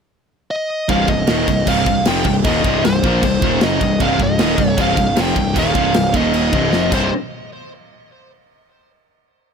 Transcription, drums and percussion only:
0.89 kick loud
0.89 crash medium
1.08 kick medium
1.08 crash medium
1.27 snare loud
1.27 crash medium
1.48 kick loud
1.48 crash medium
1.67 kick loud
1.67 crash medium
1.86 kick loud
1.86 crash medium
2.05 snare loud
2.05 crash medium
2.24 kick medium
2.24 crash medium
2.44 kick loud
2.44 crash medium
2.64 kick loud
2.64 crash medium
2.85 snare loud
2.85 crash medium
3.04 kick loud
3.04 crash medium
3.23 kick loud
3.23 crash medium
3.42 kick loud
3.42 crash medium
3.61 snare loud
3.61 crash medium
3.81 kick medium
3.81 crash medium
4.00 kick loud
4.00 crash medium
4.20 kick medium
4.20 crash soft
4.39 snare loud
4.39 crash medium
4.58 kick medium
4.58 crash medium
4.78 kick loud
4.78 crash medium
4.97 kick loud
4.97 crash medium
5.16 snare loud
5.16 crash loud
5.36 kick loud
5.36 crash medium
5.56 kick loud
5.56 crash medium
5.75 kick loud
5.75 crash medium
5.94 snare loud
5.94 crash medium
6.14 kick loud
6.14 crash medium
6.34 crash medium
6.53 kick loud
6.53 crash medium
6.73 snare medium
6.92 kick loud
6.92 crash medium

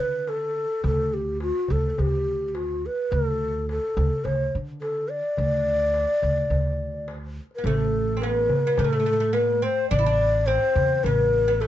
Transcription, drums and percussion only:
0.00 darbuka ka soft
0.14 darbuka ka soft
0.27 darbuka tek medium
0.84 darbuka dum medium
1.40 darbuka tek medium
1.68 darbuka dum medium
1.98 darbuka dum medium
2.27 darbuka ka soft
2.41 darbuka ka soft
2.55 darbuka tek medium
3.12 darbuka dum medium
3.69 darbuka tek medium
3.97 darbuka dum medium
4.25 darbuka dum medium
4.53 darbuka ka soft
4.68 darbuka ka soft
4.82 darbuka tek medium
5.37 darbuka dum medium
5.65 darbuka ka soft
5.94 darbuka tek medium
6.22 darbuka dum medium
6.37 darbuka ka soft
6.51 darbuka dum medium
6.94 darbuka ka soft
7.08 darbuka tek medium
7.37 darbuka ka soft
7.51 darbuka ka soft
7.66 darbuka dum medium
7.95 darbuka ka soft
8.22 darbuka tek medium
8.49 darbuka dum medium
8.77 darbuka dum medium
9.20 darbuka ka soft
9.34 darbuka tek medium
9.92 darbuka dum medium
10.48 darbuka tek medium
10.76 darbuka dum medium
11.04 darbuka dum medium
11.47 darbuka ka soft
11.62 darbuka tek medium

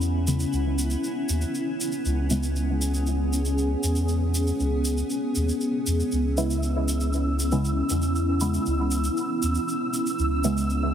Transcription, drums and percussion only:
0.01 shaker soft
0.27 shaker medium
0.40 shaker soft
0.53 shaker soft
0.79 shaker medium
0.90 shaker soft
1.04 shaker soft
1.29 shaker medium
1.41 shaker soft
1.55 shaker soft
1.81 shaker medium
1.92 shaker soft
2.05 shaker soft
2.30 shaker medium
2.43 shaker soft
2.56 shaker soft
2.81 shaker medium
2.94 shaker soft
3.06 shaker soft
3.33 shaker medium
3.45 shaker soft
3.58 shaker soft
3.83 shaker medium
3.95 shaker medium
4.08 shaker soft
4.34 shaker medium
4.47 shaker soft
4.60 shaker soft
4.85 shaker medium
4.97 shaker soft
5.10 shaker soft
5.35 shaker medium
5.49 shaker soft
5.61 shaker soft
5.87 shaker medium
6.00 shaker soft
6.12 shaker soft
6.37 shaker medium
6.50 shaker soft
6.63 shaker soft
6.88 shaker medium
7.00 shaker medium
7.13 shaker soft
7.39 shaker medium
7.52 shaker medium
7.65 shaker soft
7.89 shaker medium
8.02 shaker soft
8.15 shaker soft
8.40 shaker loud
8.54 shaker medium
8.66 shaker soft
8.91 shaker medium
9.04 shaker medium
9.17 shaker soft
9.42 shaker medium
9.55 shaker medium
9.68 shaker soft
9.94 shaker loud
10.06 shaker medium
10.19 shaker soft
10.44 shaker medium
10.57 shaker medium
10.70 shaker soft

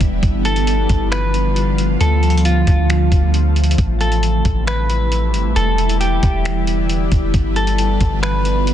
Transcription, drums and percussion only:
0.01 kick medium
0.01 closed hi-hat medium
0.23 kick loud
0.23 closed hi-hat medium
0.45 closed hi-hat medium
0.56 closed hi-hat medium
0.67 closed hi-hat medium
0.89 kick medium
0.89 closed hi-hat medium
1.12 finger snap loud
1.12 closed hi-hat medium
1.34 closed hi-hat medium
1.56 closed hi-hat medium
1.78 closed hi-hat medium
2.01 closed hi-hat medium
2.23 closed hi-hat soft
2.30 closed hi-hat medium
2.38 closed hi-hat medium
2.45 closed hi-hat medium
2.67 kick medium
2.67 closed hi-hat medium
2.90 finger snap loud
2.90 closed hi-hat medium
3.12 kick loud
3.12 closed hi-hat medium
3.34 closed hi-hat medium
3.56 closed hi-hat soft
3.64 closed hi-hat medium
3.71 closed hi-hat medium
3.78 kick loud
3.78 closed hi-hat medium
4.01 closed hi-hat medium
4.12 closed hi-hat medium
4.23 closed hi-hat medium
4.45 kick medium
4.45 closed hi-hat medium
4.67 finger snap loud
4.67 closed hi-hat medium
4.90 closed hi-hat medium
5.12 closed hi-hat medium
5.34 closed hi-hat medium
5.56 closed hi-hat medium
5.78 closed hi-hat medium
5.89 closed hi-hat medium
6.01 closed hi-hat medium
6.23 kick medium
6.23 closed hi-hat medium
6.45 finger snap loud
6.45 closed hi-hat medium
6.67 closed hi-hat medium
6.89 closed hi-hat medium
7.12 kick medium
7.12 closed hi-hat medium
7.34 kick loud
7.34 closed hi-hat medium
7.56 closed hi-hat medium
7.67 closed hi-hat medium
7.78 closed hi-hat medium
8.01 kick medium
8.01 closed hi-hat medium
8.23 finger snap loud
8.23 closed hi-hat medium
8.45 closed hi-hat medium
8.67 closed hi-hat medium

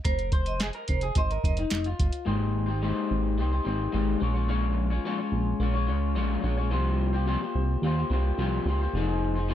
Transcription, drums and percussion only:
0.05 kick loud
0.05 closed hi-hat medium
0.19 closed hi-hat soft
0.32 kick medium
0.32 closed hi-hat medium
0.46 closed hi-hat soft
0.60 snare loud
0.60 clap medium
0.60 closed hi-hat medium
0.73 closed hi-hat soft
0.88 kick medium
0.88 closed hi-hat medium
1.01 closed hi-hat soft
1.15 kick medium
1.15 closed hi-hat medium
1.31 closed hi-hat soft
1.44 kick medium
1.44 closed hi-hat medium
1.57 closed hi-hat medium
1.70 snare medium
1.70 clap loud
1.70 closed hi-hat medium
1.84 closed hi-hat soft
1.99 kick loud
1.99 closed hi-hat medium
2.13 closed hi-hat medium

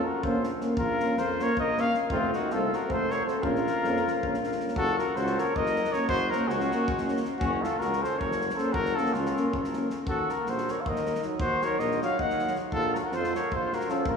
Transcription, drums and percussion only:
0.23 kick medium
0.44 snare soft
0.61 snare soft
0.77 kick medium
1.00 snare soft
1.17 snare soft
1.40 snare soft
1.57 kick medium
1.77 snare soft
1.94 snare soft
2.10 kick medium
2.33 snare soft
2.50 snare soft
2.73 snare soft
2.90 kick medium
3.10 snare soft
3.28 snare soft
3.43 kick medium
3.55 snare soft
3.67 snare soft
3.84 snare soft
3.96 snare soft
4.07 snare soft
4.23 kick medium
4.34 snare soft
4.44 snare soft
4.52 snare soft
4.60 snare soft
4.68 snare soft
4.76 kick medium
4.99 snare soft
5.16 snare soft
5.26 snare soft
5.38 snare soft
5.56 kick medium
5.66 snare soft
5.76 snare soft
5.85 snare soft
5.93 snare soft
6.09 kick medium
6.32 snare soft
6.49 snare soft
6.60 snare soft
6.71 snare soft
6.88 kick loud
6.98 snare soft
7.08 snare soft
7.17 snare soft
7.25 snare soft
7.41 kick loud
7.64 snare soft
7.81 snare soft
7.93 snare soft
8.04 snare soft
8.21 kick medium
8.32 snare soft
8.41 snare soft
8.50 snare soft
8.58 snare soft
8.74 kick medium
8.85 snare soft
8.97 snare soft
9.06 snare soft
9.14 snare soft
9.26 snare soft
9.37 snare soft
9.53 kick medium
9.64 snare soft
9.73 snare soft
9.90 snare soft
10.07 kick medium
10.29 snare soft
10.46 snare soft
10.58 snare soft
10.68 snare soft
10.86 kick medium
10.96 snare soft
11.06 snare soft
11.15 snare soft
11.22 snare soft
11.40 kick loud
11.62 snare soft
11.79 snare soft
11.91 snare soft
12.02 snare soft
12.19 kick medium
12.30 snare soft
12.39 snare soft
12.47 snare soft
12.55 snare soft
12.72 kick medium
12.95 snare soft
13.12 snare soft
13.24 snare soft
13.35 snare soft
13.52 kick medium
13.72 snare soft
13.81 snare soft
13.89 snare soft
14.06 kick medium

